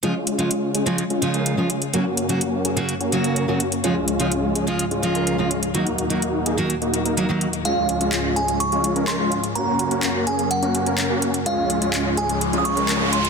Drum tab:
HH |x-xxx-xxxxxxx-xx|x-xxx-xxxxxxx-xx|x-xxx-xxxxxxx-xx|xxxxx-xxxxxxx-xx|
CP |----------------|----------------|----------------|----------------|

HH |x-xxx-xxxxxxx-xx|x-xxx-xxxxxxx-xx|x-xxx-xxxxxxx-xx|
CP |----x-------x---|----x-------x---|----x-------x---|